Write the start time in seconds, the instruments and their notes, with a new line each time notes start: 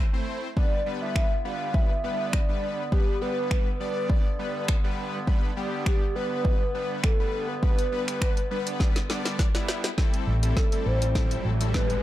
Already playing: woodwind section A2 E3 C4
0.13 analog polysynth A3 C4 E4 C5
0.57 woodwind section G2 D3 B3, analog polysynth G3 B3 D4 B4, soft synth lead D5, kick
0.86 analog polysynth G3 B3 D4 B4
1.02 soft synth lead E5
1.16 finger snap, kick
1.45 analog polysynth G3 B3 D4 B4, soft synth lead F5
1.74 soft synth lead E5, kick
2.04 analog polysynth G3 B3 D4 B4
2.33 soft synth lead D5, finger snap, kick
2.49 analog polysynth G3 B3 D4 B4
2.92 analog polysynth G3 B3 D4 B4, soft synth lead G4, kick
3.21 analog polysynth G3 B3 D4 B4, soft synth lead B4
3.51 finger snap, kick
3.80 analog polysynth G3 B3 D4 D5, soft synth lead B4
4.10 soft synth lead D5, kick
4.39 analog polysynth G3 B3 D4 B4
4.68 finger snap, kick
4.84 analog polysynth G3 B3 D4 B4
5.27 analog polysynth G3 B3 D4 B4, kick
5.57 analog polysynth G3 B3 D4 G4
5.86 soft synth lead G4, finger snap, kick
6.15 analog polysynth G3 B3 D4 B4, soft synth lead B4
6.45 kick
6.74 analog polysynth G3 B3 D4 B4, soft synth lead B4
7.04 soft synth lead A4, finger snap, kick
7.19 analog polysynth G3 B3 D4 B4
7.48 soft synth lead B4
7.63 analog polysynth G3 B3 D4 B4, kick
7.78 closed hi-hat
7.92 analog polysynth G3 B3 D4 B4
8.08 finger snap, closed hi-hat
8.21 finger snap, kick
8.37 closed hi-hat
8.51 analog polysynth G3 B3 D4 B4
8.67 closed hi-hat
8.80 kick, snare
8.96 snare, closed hi-hat
9.10 analog polysynth G3 B3 D4 D5, snare
9.25 snare, closed hi-hat
9.39 kick, snare
9.54 analog polysynth G3 B3 D4 E4, snare, closed hi-hat
9.68 snare
9.84 snare, closed hi-hat
9.98 woodwind section G3 A3 C4, analog polysynth G3 C4 E4 A4, kick, snare, riser
10.14 closed hi-hat
10.27 fingered electric bass A1
10.43 analog polysynth G3 C4 E4 A4, closed hi-hat
10.57 soft synth lead A4, kick, snare
10.72 analog polysynth G3 C4 E4 A4, closed hi-hat
10.86 fingered electric bass A1, soft synth lead C5
11.02 closed hi-hat
11.15 analog polysynth G3 C4 E4 A4, kick, snare
11.31 closed hi-hat
11.45 fingered electric bass A1
11.60 analog polysynth G3 C4 E4 A4, closed hi-hat
11.74 soft synth lead B4, kick, snare
11.90 closed hi-hat